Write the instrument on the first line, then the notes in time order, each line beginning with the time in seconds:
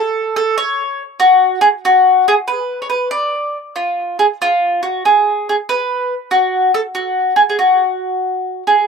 mandolin
Already playing: A4
0.36 A4
0.58 C#5
1.20 F#4
1.61 G#4
1.85 F#4
2.28 G#4
2.48 B4
2.82 C#5
2.90 B4
3.11 D5
3.76 F4
4.19 G#4
4.42 F4
4.83 F#4
5.05 G#4
5.49 G#4
5.69 B4
6.31 F#4
6.74 A4
6.95 F#4
7.36 G#4
7.50 G#4
7.59 F#4
8.67 G#4